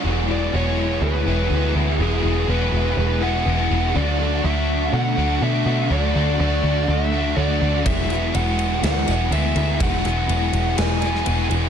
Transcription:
<<
  \new Staff \with { instrumentName = "Lead electric guitar" } { \time 4/4 \key e \mixolydian \tempo 4 = 123 r8 d''8 cis''4 b'4. r8 | gis'4 b'4 b'8 fis''4. | d''4 e''4 fis''4 e''4 | d''4 d''4 e''4 d''4 |
e''4 fis''4 fis''4 e''4 | fis''8 fis''4. gis''4. r8 | }
  \new Staff \with { instrumentName = "Clean electric guitar" } { \time 4/4 \key e \mixolydian fis8 b8 fis8 e'8 gis'8 e'8 b8 e'8 | fis8 b8 fis8 e'8 gis'8 e'8 b8 e'8 | fis8 a8 fis8 d'8 a'8 d'8 a8 d'8 | fis8 a8 fis8 d'8 a'8 d'8 a8 d'8 |
fis8 b8 fis8 e'8 gis'8 e'8 b8 e'8 | fis8 b8 fis8 e'8 gis'8 e'8 b8 e'8 | }
  \new Staff \with { instrumentName = "Overdriven electric guitar" } { \time 4/4 \key e \mixolydian <e gis b e'>8 <gis b e'>8 <e gis b e'>4. <gis b e'>8 <e gis b e'>8 <gis b e'>8 | <e gis b e'>8 <gis b e'>8 <e gis b e'>4. <gis b e'>8 <e gis b e'>8 <gis b e'>8 | <d a d' fis'>8 <a d' fis'>8 <d a d' fis'>4. <a d' fis'>8 <d a d' fis'>8 <a d' fis'>8 | <d a d' fis'>8 <a d' fis'>8 <d a d' fis'>4. <a d' fis'>8 <d a d' fis'>8 <a d' fis'>8 |
<e gis b e'>8 <gis b e'>8 <e gis b e'>4. <gis b e'>8 <e gis b e'>8 <gis b e'>8 | <e gis b e'>8 <gis b e'>8 <e gis b e'>4. <gis b e'>8 <e gis b e'>8 <gis b e'>8 | }
  \new Staff \with { instrumentName = "Overdriven electric guitar" } { \time 4/4 \key e \mixolydian <e, b, e gis b gis'>8 <e gis b gis'>8 <e gis b gis'>4. <e gis b gis'>8 <e gis b gis'>8 <e gis b gis'>8 | <e, b, e gis b gis'>8 <e gis b gis'>8 <e gis b gis'>4. <e gis b gis'>8 <e gis b gis'>8 <e gis b gis'>8 | <d a d' fis'>8 <a d' fis'>8 <d a d' fis'>4. <a d' fis'>8 <d a d' fis'>8 <a d' fis'>8 | <d a d' fis'>8 <a d' fis'>8 <d a d' fis'>4. <a d' fis'>8 <d a d' fis'>8 <a d' fis'>8 |
<e, b, e gis b gis'>8 <e gis b gis'>8 <e gis b gis'>4. <e gis b gis'>8 <e gis b gis'>8 <e gis b gis'>8 | <e, b, e gis b gis'>8 <e gis b gis'>8 <e gis b gis'>4. <e gis b gis'>8 <e gis b gis'>8 <e gis b gis'>8 | }
  \new Staff \with { instrumentName = "Picked electric bass" } { \clef bass \time 4/4 \key e \mixolydian e,,4 e,,4 d,8 e,,8 d,8 d,8 | e,,8 e,,8 e,,8 e,,8 e,,4 e,,8 e,,8 | d,4 d,4 b,8 d,8 b,8 b,8 | d,8 d,8 d,8 d,8 d,4 d,8 d,8 |
e,,4 e,,4 d,8 e,,8 d,8 d,8 | e,,8 e,,8 e,,8 e,,8 e,,4 e,,8 e,,8 | }
  \new DrumStaff \with { instrumentName = "Drums" } \drummode { \time 4/4 r4 r4 r4 r4 | r4 r4 r4 r4 | r4 r4 r4 r4 | r4 r4 r4 r4 |
<bd cymr>8 cymr8 cymr8 cymr8 <cymr sn>8 cymr8 cymr8 cymr8 | <bd cymr>8 cymr8 cymr8 cymr8 <cymr sn>8 cymr16 sn16 cymr8 cymr8 | }
>>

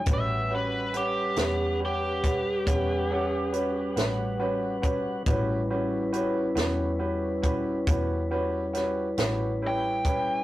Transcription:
<<
  \new Staff \with { instrumentName = "Lead electric guitar" } { \time 12/8 \key a \major \tempo 4. = 46 e''8 b'8 g'4 g'2 r2 | r1 r4 g''4 | }
  \new Staff \with { instrumentName = "Upright piano" } { \time 12/8 \key a \major <cis' fis' g' b'>8 <cis' fis' g' b'>8 <cis' g' b' fis''>8 <cis' g' b' fis''>8 <cis' g' b' fis''>8 <cis' g' b' fis''>8 <cis' g' b' fis''>8 <cis' g' a' fis''>8 <cis' fis' g' b'>8 <cis' fis' g' b'>8 <cis' fis' g' b'>8 <cis' fis' g' b'>8 | <cis' fis' g' b'>8 <cis' fis' g' b'>8 <cis' fis' g' b'>8 <cis' fis' g' b'>8 <cis' fis' g' b'>8 <cis' fis' g' b'>8 <cis' fis' g' b'>8 <cis' fis' g' b'>8 <cis' fis' g' b'>8 <cis' fis' g' b'>8 <cis' e' g' b'>8 <cis' e' g' b'>8 | }
  \new Staff \with { instrumentName = "Tonewheel organ" } { \time 12/8 \key a \major <g cis' b' fis''>1. | <g cis' e' b'>1. | }
  \new Staff \with { instrumentName = "Fingered electric bass" } { \clef bass \time 12/8 \key a \major a,,4. e,4. e,4. a,,4. | a,,4. e,4. e,4. a,,4. | }
  \new DrumStaff \with { instrumentName = "Drums" } \drummode { \time 12/8 <hh bd>4 hh8 <hh sn>4 <hh bd>8 <hh bd>4 hh8 <hh sn>4 <hh bd>8 | <hh bd>4 hh8 <hh sn>4 <hh bd>8 <hh bd>4 <hh sn>8 <hh sn>4 <hh bd>8 | }
>>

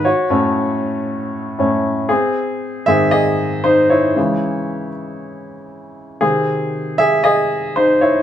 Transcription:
<<
  \new Staff \with { instrumentName = "Grand piano" } { \time 4/4 \key fis \dorian \tempo 4 = 117 <fis' cis''>2. r4 | \key gis \phrygian <bis gis'>4. <gis' e''>8 <gis' dis''>4 <dis' bis'>8 <e' cis''>8~ | <e' cis''>4. r2 r8 | gis'4. <gis' e''>8 <gis' dis''>4 <dis' bis'>8 <e' cis''>8 | }
  \new Staff \with { instrumentName = "Grand piano" } { \clef bass \time 4/4 \key fis \dorian r8 <a, a cis'>2~ <a, a cis'>8 <a, a cis'>8 r8 | \key gis \phrygian r4. <gis, dis bis>8 r2 | <cis e gis>1 | <bis, dis bis>1 | }
>>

